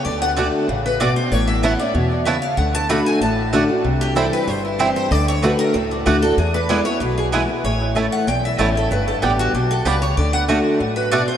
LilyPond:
<<
  \new Staff \with { instrumentName = "Steel-string acoustic guitar" } { \time 4/4 \key d \major \tempo 4 = 190 d''8 fis''8 r4. b'8 d''8 c''8 | cis''8 e''8 fis''8 d''8 cis''8 d''8 e''8 f''8 | fis''8 a''8 b''8 gis''8 a''4.~ a''16 r16 | r8 g'8 a'8 b'8 c''8 e'8 g'8 c''8 |
d''8 cis''8 b'8 bes'8 a'8 d'8 fis'8 a'8 | gis'8 b'8 d''8 cis''8 b'8 gis'8 r4 | cis''4. fis''8 g''8 e''8 cis''8 a'8 | b'8 a'8 g'8 fis'8 g'8 a'8 b'8 cis''8 |
d''8 fis''8 r4. b'8 d''8 c''8 | }
  \new Staff \with { instrumentName = "Mandolin" } { \time 4/4 \key d \major r4 <a fis' d'' fis''>8 r4. <a fis' d'' fis''>8 r8 | r4 <b e' cis'' a''>8 r4. <b e' cis'' a''>8 r8 | r4 <a fis' d'' fis''>8 r4. <a fis' d'' fis''>8 r8 | r4 <c' e' c'' g''>8 r4. <c' e' c'' g''>8 r8 |
r4 <a fis' d'' fis''>8 r4. <a fis' d'' fis''>8 r8 | r4 <b e' b' gis''>8 r4. <b e' b' gis''>8 r8 | r4 <a e' cis'' a''>8 r4. <a e' cis'' a''>8 r8 | r4 <b g' d'' g''>8 r4. <b g' d'' g''>8 r8 |
r4 <a fis' d'' fis''>8 r4. <a fis' d'' fis''>8 r8 | }
  \new Staff \with { instrumentName = "Five-string banjo" } { \time 4/4 \key d \major r4 <a d'>8 r4. <a d'>8 r8 | r4 <a b e'>8 r4. <a b e'>8 r8 | r4 <a d'>8 r4. <a d'>8 r8 | r4 <g c' e'>8 r4. <g c' e'>8 r8 |
r4 <a d'>8 r4. <a d'>8 r8 | r4 <gis b e'>8 r4. <gis b e'>8 r8 | r4 <a cis' e'>8 r4. <a cis' e'>8 r8 | r4 <g b d'>8 r4. <g b d'>8 r8 |
r4 <a d'>8 r4. <a d'>8 r8 | }
  \new Staff \with { instrumentName = "Steel-string acoustic guitar" } { \time 4/4 \key d \major << { r4 <d a d' fis'>4 r2 | r4 <e b cis' e'>8 <cis' e'>8 r2 | r4 <d a d' fis'>4 r4 <d a d' fis'>8 <d' fis'>8 | r4 <e g c' e'>4 r4 <e g c' e'>4 |
r4 <d a d' fis'>4 r4 <d a d' fis'>8 <d' fis'>8 | r4 <e gis b e'>8 <b e'>8 r4 <e gis b e'>8 <b e'>8 | r4 <e a cis' e'>4 r4 <e a cis' e'>8 <cis' e'>8 | r4 <d g b g'>4 r2 |
r4 <d a d' fis'>4 r2 | } \\ { d2 cis4 b,4 | a,2 b,4 cis4 | d2 a,2 | c2 g,2 |
d2 a,2 | e,2 b,2 | a,2 e,2 | g,2 b,4 cis4 |
d2 fis,4 b,4 | } >> }
  \new Staff \with { instrumentName = "Upright bass" } { \clef bass \time 4/4 \key d \major d,2 a,,2 | a,,2 e,2 | d,2 a,,2 | c,2 g,,2 |
d,2 cis,4 d,4 | e,2 b,,2 | a,,2 b,,4 a,,4 | g,,4 a,,4 b,,4 cis,4 |
d,2 a,,2 | }
>>